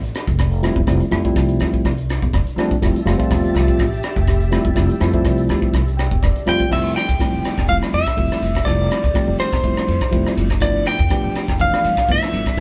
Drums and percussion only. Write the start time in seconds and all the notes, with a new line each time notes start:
0.04 closed hi-hat
0.15 cross-stick, closed hi-hat
0.27 kick, closed hi-hat
0.39 kick, cross-stick, closed hi-hat
0.52 closed hi-hat
0.63 cross-stick, closed hi-hat
0.76 kick
0.87 kick, cross-stick, closed hi-hat
1.00 closed hi-hat
1.11 cross-stick, closed hi-hat
1.25 kick
1.36 kick, cross-stick, closed hi-hat
1.49 closed hi-hat
1.60 cross-stick, closed hi-hat
1.74 kick, closed hi-hat
1.85 kick, cross-stick, closed hi-hat
1.98 closed hi-hat
2.10 cross-stick, closed hi-hat
2.22 kick, closed hi-hat
2.33 kick, cross-stick, closed hi-hat
2.47 closed hi-hat
2.58 cross-stick, closed hi-hat
2.71 kick, closed hi-hat
2.82 kick, cross-stick, closed hi-hat
2.96 closed hi-hat
3.06 cross-stick, closed hi-hat
3.20 kick, closed hi-hat
3.31 kick, cross-stick, closed hi-hat
3.44 closed hi-hat
3.56 cross-stick, closed hi-hat
3.68 kick, closed hi-hat
3.79 kick, cross-stick, closed hi-hat
3.93 closed hi-hat
4.03 cross-stick, closed hi-hat
4.16 kick, closed hi-hat
4.27 kick, cross-stick, closed hi-hat
4.40 closed hi-hat
4.52 cross-stick, closed hi-hat
4.65 kick
4.76 kick, cross-stick, closed hi-hat
4.90 closed hi-hat
5.00 cross-stick, closed hi-hat
5.14 kick
5.25 kick, cross-stick, closed hi-hat
5.38 closed hi-hat
5.49 cross-stick, closed hi-hat
5.62 kick, closed hi-hat
5.74 kick, cross-stick, closed hi-hat
5.87 closed hi-hat
5.99 cross-stick, closed hi-hat
6.11 kick, closed hi-hat
6.23 kick, cross-stick, closed hi-hat
6.36 closed hi-hat
6.47 cross-stick, closed hi-hat
6.60 kick, closed hi-hat
6.72 kick, cross-stick, crash
6.96 cross-stick, ride
7.09 kick, ride
7.20 kick, cross-stick, ride
7.45 cross-stick, ride
7.58 kick, cross-stick, ride
7.69 kick, ride
7.83 cross-stick
7.94 ride
8.07 kick, cross-stick, ride
8.18 kick, ride
8.32 cross-stick
8.43 ride
8.55 kick, cross-stick, ride
8.67 kick, cross-stick, ride
8.91 cross-stick, ride
9.04 kick, ride
9.15 kick, cross-stick, ride
9.40 cross-stick, ride
9.53 kick, cross-stick, ride
9.64 kick, ride
9.77 cross-stick
9.88 ride
10.01 kick, cross-stick, ride
10.13 kick, ride
10.27 cross-stick
10.37 ride
10.50 kick, cross-stick, ride
10.61 kick, cross-stick, ride
10.86 cross-stick, ride
10.99 kick, ride
11.10 kick, cross-stick, ride
11.35 cross-stick, ride
11.48 kick, cross-stick, ride
11.60 kick, ride
11.74 cross-stick
11.84 ride
11.97 kick, cross-stick, ride
12.09 kick, ride
12.23 cross-stick
12.33 ride
12.46 kick, cross-stick, ride